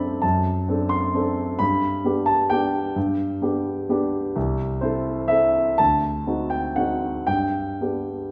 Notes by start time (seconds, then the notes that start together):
Already playing: F#2 C4 D4 A4 D5 B5
0.22 F#2 A5
0.68 C4 D4 A4
0.89 C6
1.14 C4 D4 A4
1.59 G2 B5
2.04 B3 D4 G4
2.26 A5
2.50 B3 D4 G4 G5
2.96 G2
3.42 B3 D4 G4
3.89 B3 D4 G4
4.36 C2
4.81 C4 E4 A4 C5
5.28 C4 E4 A4 E5
5.78 D2 A5
6.26 C4 D#4 F#4
6.50 G5
6.76 C4 D#4 F#4 F#5
7.27 G2 G5
7.81 B3 D4 G4